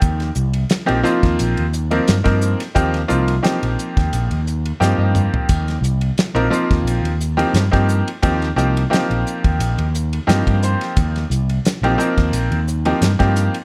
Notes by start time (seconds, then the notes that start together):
Already playing: F3 A#3 C4 D#4 G4
0.02 D#2, kick, hi-hat pedal, ride
0.20 snare, ride
0.35 C2, hi-hat pedal
0.54 ride
0.70 snare, hi-hat pedal, ride
0.86 A#1 F3 A#3 C4 D#4 G4, ride
1.03 F3 A#3 C4 D#4 F4, hi-hat pedal
1.23 D#2, kick, snare, ride
1.39 A#1, hi-hat pedal, ride
1.57 D#2, ride
1.73 hi-hat pedal
1.91 F3 A#3 C4 D#4 A#4, ride
2.08 G2, snare, hi-hat pedal, ride
2.24 G2 F3 A#3 C4 D#4 A#4, kick, snare, ride
2.41 hi-hat pedal
2.60 snare, ride
2.75 D#2 F3 A#3 C4 D#4 G4, kick, hi-hat pedal, ride
2.94 snare, ride
3.08 C2 F3 A#3 C4 D#4 F4, hi-hat pedal
3.28 ride
3.43 F3 A#3 C4 D#4 G4, snare, hi-hat pedal, ride
3.62 A#1, ride
3.79 hi-hat pedal
3.97 D#2, kick, snare, ride
4.13 A#1, hi-hat pedal, ride
4.30 D#2, ride
4.47 hi-hat pedal
4.66 ride
4.80 G2 F3 A#3 C4 D#4 G4 G5, snare, hi-hat pedal
4.98 G2 D#5
5.15 hi-hat pedal, mid tom
5.34 floor tom
5.49 D#2, kick, hi-hat pedal, ride, splash
5.68 snare, ride
5.81 C2, hi-hat pedal
6.01 ride
6.16 muted fretless electric bass stroke, snare, hi-hat pedal, ride
6.35 A#1 F3 A#3 C4 D#4 A#4, ride
6.50 F3 A#3 C4 D#4 F4, hi-hat pedal
6.70 D#2, kick, snare, ride
6.83 A#1
6.87 hi-hat pedal, ride
7.01 D#2, ride
7.21 hi-hat pedal
7.37 F3 A#3 C4 D#4 G4, ride
7.53 G2, snare, hi-hat pedal, ride
7.71 G2 F3 A#3 C4 D#4 G4, kick, snare, ride
7.89 hi-hat pedal
8.08 ride
8.22 D#2 F3 A#3 C4 D#4 G4, kick, hi-hat pedal, ride
8.42 snare, ride
8.56 C2 F3 A#3 C4 D#4 G4, hi-hat pedal
8.77 ride
8.90 F3 A#3 C4 D#4 G4, hi-hat pedal, ride
8.94 snare
9.10 A#1, ride
9.27 hi-hat pedal
9.44 D#2, kick, ride
9.59 A#1, hi-hat pedal, ride
9.77 D#2, ride
9.95 hi-hat pedal
10.13 ride
10.27 G2 F3 A#3 C4 D#4 G4 G5, snare, hi-hat pedal, ride
10.47 G2, kick, ride
10.63 C5, hi-hat pedal
10.81 snare, ride
10.97 D#2, kick, hi-hat pedal, ride
11.16 snare, ride
11.30 C2, hi-hat pedal
11.49 ride
11.65 snare, hi-hat pedal, ride
11.81 A#1 F3 A#3 C4 D#4 G4, ride
11.98 F3 A#3 C4 D#4 A#4, hi-hat pedal
12.17 D#2, kick, snare, ride
12.32 A#1, hi-hat pedal, ride
12.51 D#2, ride
12.67 hi-hat pedal
12.85 F3 A#3 C4 D#4 G4, ride
13.01 G2, snare, hi-hat pedal, ride
13.19 G2 F3 A#3 C4 D#4 G4, kick, snare, ride
13.36 hi-hat pedal
13.54 ride